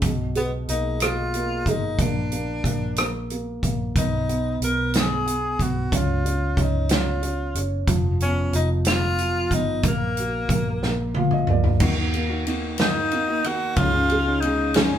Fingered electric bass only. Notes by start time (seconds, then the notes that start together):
0.02 B1
0.68 B1
1.66 G#1
1.99 A#1
2.64 A#1
3.63 A#1
3.96 B1
4.60 B1
5.59 B1
5.92 C#2
6.57 C#2
7.55 F#1
7.88 F1
8.53 F1
9.51 G#1
9.83 A#1
10.49 A#1
10.82 A#1
11.49 D2
11.81 D#2
13.77 C#2